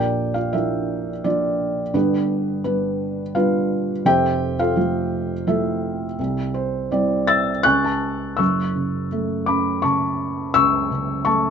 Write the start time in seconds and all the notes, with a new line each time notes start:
Already playing: A#1 A#2 G4 A#4 D5 G5
0.34 F4 F5
0.53 F3 A#3 D4 E4 A#4 E5
1.24 F3 A#3 D4 F4 D5
1.93 G1 G2 B3 D4 G4 B4
2.64 G3 B3 D4 B4
3.35 G3 B3 D4 F4 B4 F5
4.05 F1 F2 G4 C5 E5 G5
4.59 F4 A4 F5
4.76 F3 A3 F4
5.47 F3 A3 E4 A4 E5
6.19 C2
6.54 C5
6.91 G3 C4 E4 D5
7.27 E5 E6 A6
7.63 C#2 G#5 C#6 F#6
7.84 A5
8.37 F#1 F#2 C#6 E6
8.76 C#3
9.12 A3
9.46 C#4 B5 D6
9.82 C#3 A5 C#6
10.54 C#2 C#6 E6
10.91 C#3
11.25 A3 A5 C#6